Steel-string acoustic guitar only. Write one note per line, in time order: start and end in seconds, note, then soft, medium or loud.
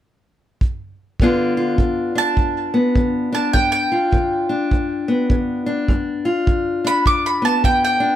1.21 1.74 G2 medium
1.21 1.78 D3 medium
1.21 2.73 B3 medium
1.21 2.15 D4 medium
1.21 1.57 F4 medium
1.57 3.58 F4 medium
1.79 2.33 D3 medium
2.15 3.32 D4 medium
2.37 2.91 D2 medium
2.74 3.95 B3 medium
2.96 3.50 D3 medium
3.32 4.49 D4 medium
3.55 4.08 G2 medium
3.92 5.92 F4 medium
4.13 4.67 D3 medium
4.49 5.66 D4 medium
4.73 5.26 D2 medium
5.08 6.28 B3 medium
5.31 5.84 D3 medium
5.66 6.84 D4 medium
5.89 6.43 G2 medium
6.25 8.16 F4 medium
6.47 7.01 D3 medium
6.84 7.99 D4 medium
7.06 7.60 D2 medium
7.42 8.16 B3 medium
7.64 8.16 D3 medium
8.00 8.16 D4 medium